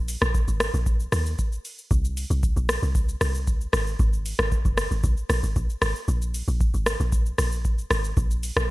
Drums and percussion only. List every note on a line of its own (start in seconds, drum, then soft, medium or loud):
0.08 open hi-hat medium
0.08 shaker medium
0.22 cross-stick loud
0.22 shaker medium
0.35 kick loud
0.35 shaker medium
0.48 shaker medium
0.60 cross-stick loud
0.60 open hi-hat medium
0.60 shaker medium
0.74 shaker medium
0.86 kick loud
0.86 shaker medium
1.00 shaker medium
1.12 cross-stick medium
1.12 open hi-hat medium
1.12 shaker loud
1.26 shaker medium
1.39 kick loud
1.39 shaker medium
1.52 shaker soft
1.65 open hi-hat soft
1.65 shaker medium
1.78 shaker medium
1.91 kick loud
1.91 shaker medium
2.05 shaker medium
2.17 open hi-hat medium
2.17 shaker medium
2.31 shaker medium
2.43 kick loud
2.43 shaker medium
2.57 shaker medium
2.69 cross-stick loud
2.69 open hi-hat medium
2.69 shaker medium
2.83 shaker medium
2.95 kick loud
2.95 shaker medium
3.09 shaker medium
3.21 cross-stick medium
3.21 open hi-hat medium
3.21 shaker loud
3.35 shaker medium
3.47 kick medium
3.47 shaker medium
3.61 shaker soft
3.73 cross-stick loud
3.73 open hi-hat medium
3.73 shaker medium
3.87 shaker medium
3.99 kick loud
3.99 shaker medium
4.13 shaker medium
4.26 open hi-hat medium
4.26 shaker loud
4.39 cross-stick loud
4.39 shaker soft
4.52 kick loud
4.52 shaker medium
4.65 kick medium
4.65 shaker medium
4.78 cross-stick loud
4.78 open hi-hat medium
4.78 shaker medium
4.91 shaker medium
5.04 kick loud
5.04 shaker medium
5.17 shaker medium
5.30 cross-stick medium
5.30 open hi-hat medium
5.30 shaker loud
5.43 shaker medium
5.56 kick medium
5.56 shaker medium
5.70 shaker soft
5.82 cross-stick loud
5.82 open hi-hat soft
5.82 shaker medium
5.95 shaker medium
6.08 shaker medium
6.22 shaker medium
6.34 open hi-hat medium
6.34 shaker medium
6.48 shaker medium
6.61 kick loud
6.61 shaker medium
6.74 shaker medium
6.86 cross-stick loud
6.86 open hi-hat medium
6.86 shaker medium
7.00 shaker medium
7.12 kick loud
7.12 shaker medium
7.26 shaker medium
7.38 cross-stick medium
7.38 open hi-hat medium
7.38 shaker loud
7.52 shaker medium
7.65 kick medium
7.65 shaker medium
7.78 shaker soft
7.91 cross-stick loud
7.91 open hi-hat medium
7.91 shaker medium
8.04 shaker medium
8.17 kick loud
8.17 shaker medium
8.31 shaker medium
8.43 open hi-hat medium
8.43 shaker medium
8.57 cross-stick loud
8.57 shaker medium